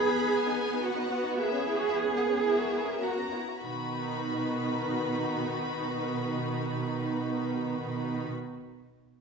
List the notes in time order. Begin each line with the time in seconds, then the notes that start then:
Already playing: B3 G#4 B4 B5
0.09 B3
0.23 D#4
0.34 B3 G#5
0.48 D#4
0.61 B3
0.74 D#4
0.85 B3 F#4 F#5
0.98 D#4
1.10 B3
1.23 D#4
1.36 A#3 G#4 E5
1.51 C#4
1.64 E4
1.77 F#4
1.88 E4 E5
2.03 C#4
2.15 A#3 F#5
2.30 C#4
2.43 E4 A#4 E5
2.58 F#4
2.73 E4
2.88 C#4
3.01 A#3 F#4 A#5
3.18 C#4
3.34 E4
3.51 F#4
3.63 B2 D#3 D#4 F#4 B4 B5